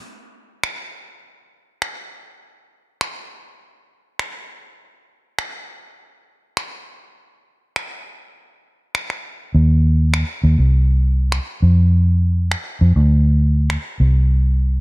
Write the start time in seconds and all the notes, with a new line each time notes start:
0.63 finger snap
1.82 finger snap
3.01 finger snap
4.19 finger snap
5.39 finger snap
6.57 finger snap
7.76 finger snap
8.95 finger snap
9.10 finger snap
9.54 D#2
10.14 finger snap
10.44 D#2
10.58 C2
11.32 finger snap
11.62 F2
12.52 finger snap
12.81 F2
12.96 D2
13.70 finger snap
14.00 C2